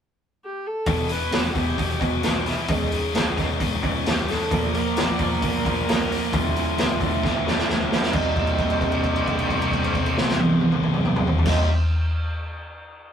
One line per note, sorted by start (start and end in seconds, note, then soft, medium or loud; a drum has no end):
0.44 0.68 G4 medium
0.67 1.13 A4 loud
0.86 1.16 E1 medium
0.86 1.07 E2 medium
0.86 1.08 B2 medium
0.86 1.09 E3 medium
0.86 kick loud
0.86 open hi-hat medium
1.09 1.31 E2 medium
1.09 1.31 B2 medium
1.09 1.32 E3 medium
1.09 1.51 B4 loud
1.09 open hi-hat medium
1.32 1.46 E1 medium
1.32 1.54 E2 medium
1.32 1.54 B2 medium
1.32 1.55 E3 medium
1.32 snare loud
1.32 open hi-hat medium
1.50 1.57 F#4 medium
1.55 1.70 E1 medium
1.55 1.76 E2 medium
1.55 1.77 B2 medium
1.55 1.77 E3 medium
1.55 2.01 G4 medium
1.55 kick medium
1.55 open hi-hat medium
1.78 1.93 E1 medium
1.78 2.00 E2 medium
1.78 2.00 B2 medium
1.78 2.00 E3 medium
1.78 kick medium
1.78 open hi-hat medium
2.00 2.16 E1 medium
2.00 2.23 E2 medium
2.00 2.23 B2 medium
2.00 2.23 E3 medium
2.00 2.47 F#4 medium
2.00 kick medium
2.00 open hi-hat medium
2.23 2.53 B1 medium
2.23 2.46 E2 medium
2.23 2.46 B2 medium
2.23 2.47 E3 medium
2.23 snare medium
2.23 open hi-hat medium
2.45 2.69 E2 medium
2.45 2.69 B2 medium
2.45 2.69 E3 medium
2.45 2.71 E4 medium
2.45 snare soft
2.45 open hi-hat medium
2.68 2.98 C#1 medium
2.68 2.90 C#2 medium
2.68 2.91 G#2 medium
2.68 2.91 C#3 medium
2.68 3.61 G#4 medium
2.68 kick loud
2.68 open hi-hat medium
2.91 3.13 C#2 medium
2.91 3.13 G#2 medium
2.91 3.13 C#3 medium
2.91 open hi-hat medium
3.14 3.44 C#1 medium
3.14 3.36 C#2 medium
3.14 3.36 G#2 medium
3.14 3.36 C#3 medium
3.14 snare loud
3.14 open hi-hat medium
3.37 3.59 C#2 medium
3.37 3.60 G#2 medium
3.37 3.60 C#3 medium
3.37 kick medium
3.37 snare soft
3.37 open hi-hat soft
3.60 3.75 C#1 medium
3.60 3.82 C#2 medium
3.60 3.82 G#2 medium
3.60 3.82 C#3 medium
3.60 kick medium
3.60 open hi-hat medium
3.83 3.97 C#1 medium
3.83 4.05 C#2 medium
3.83 4.05 G#2 medium
3.83 4.06 C#3 medium
3.83 kick medium
3.83 open hi-hat soft
4.06 4.35 C#1 medium
4.06 4.27 C#2 medium
4.06 4.28 G#2 medium
4.06 4.29 C#3 medium
4.06 4.31 G4 medium
4.06 snare medium
4.06 open hi-hat medium
4.28 4.50 C#2 medium
4.28 4.51 G#2 medium
4.28 4.51 C#3 medium
4.28 4.72 A4 loud
4.28 snare soft
4.28 open hi-hat soft
4.51 4.80 A#1 medium
4.51 4.73 A#2 medium
4.51 4.74 F3 medium
4.51 4.74 A#3 medium
4.51 kick loud
4.51 open hi-hat medium
4.73 4.96 A#2 medium
4.73 4.97 F3 medium
4.73 4.97 A#3 medium
4.73 4.99 A#4 medium
4.73 open hi-hat medium
4.96 5.12 A#1 medium
4.96 5.20 A#2 medium
4.96 5.21 F3 medium
4.96 5.21 A#3 medium
4.96 5.42 D5 loud
4.96 snare loud
4.96 open hi-hat medium
5.19 5.34 A#1 medium
5.19 5.41 A#2 medium
5.19 5.42 F3 medium
5.19 5.41 A#3 medium
5.19 kick medium
5.19 open hi-hat medium
5.42 5.57 A#1 medium
5.42 5.64 A#2 medium
5.42 5.65 F3 medium
5.42 5.65 A#3 medium
5.42 6.37 A#4 loud
5.42 kick medium
5.42 open hi-hat medium
5.65 5.80 A#1 medium
5.65 5.87 A#2 medium
5.65 5.88 F3 medium
5.65 5.88 A#3 medium
5.65 kick medium
5.65 open hi-hat medium
5.88 6.16 C1 medium
5.88 6.09 A#2 medium
5.88 6.10 F3 medium
5.88 6.10 A#3 medium
5.88 snare medium
5.88 open hi-hat medium
6.11 6.32 A#2 medium
6.11 6.32 F3 medium
6.11 6.33 A#3 medium
6.11 open hi-hat medium
6.32 6.62 D1 medium
6.32 6.54 D2 medium
6.32 6.55 A2 loud
6.32 6.56 D3 loud
6.32 7.70 F4 medium
6.32 kick loud
6.32 open hi-hat medium
6.56 6.76 D2 medium
6.56 6.77 A2 medium
6.56 6.78 D3 medium
6.56 open hi-hat medium
6.78 7.07 D1 medium
6.78 6.99 D2 medium
6.78 7.00 A2 medium
6.78 7.00 D3 medium
6.78 snare loud
6.78 open hi-hat medium
7.00 7.23 D2 medium
7.00 7.23 A2 medium
7.00 7.24 D3 medium
7.00 kick medium
7.00 open hi-hat medium
7.24 7.38 D1 medium
7.24 7.43 D2 medium
7.24 7.44 A2 loud
7.24 7.45 D3 loud
7.24 kick medium
7.24 snare medium
7.44 7.60 D1 medium
7.44 7.67 D2 medium
7.44 7.68 A2 medium
7.44 7.68 D3 medium
7.44 snare medium
7.58 snare medium
7.68 7.97 D1 medium
7.68 7.89 D2 medium
7.68 7.89 A2 medium
7.68 7.90 D3 medium
7.68 snare medium
7.90 8.12 D2 medium
7.90 8.12 A2 medium
7.90 8.13 D3 medium
7.90 snare medium
8.03 snare medium
8.13 11.37 C1 medium
8.13 11.45 C2 medium
8.13 11.47 G2 loud
8.13 11.47 G3 loud
8.13 11.38 C4 medium
8.13 11.48 D#4 loud
8.13 kick loud
8.13 crash medium
8.17 11.49 C3 loud
8.36 kick medium
8.36 crash soft
8.47 crash soft
8.58 kick medium
8.58 crash soft
8.70 crash soft
8.81 kick medium
8.81 crash soft
8.92 crash soft
9.03 kick medium
9.03 crash soft
9.16 crash soft
9.26 kick medium
9.26 crash soft
9.39 crash soft
9.49 kick medium
9.49 crash soft
9.62 crash soft
9.72 kick medium
9.72 crash soft
9.84 crash soft
9.94 kick medium
9.94 crash soft
10.06 crash soft
10.17 snare medium
10.29 snare medium
10.39 high tom medium
10.49 high tom medium
10.61 high tom medium
10.72 mid tom medium
10.83 mid tom medium
10.93 mid tom medium
11.05 mid tom loud
11.16 mid tom medium
11.27 floor tom medium
11.38 floor tom medium
11.45 11.65 C1 medium
11.45 11.66 C2 medium
11.45 11.68 G2 medium
11.45 11.67 G3 medium
11.45 11.66 C4 medium
11.45 11.68 D#4 medium
11.45 kick loud
11.45 snare medium
11.45 crash loud
11.50 11.68 C3 loud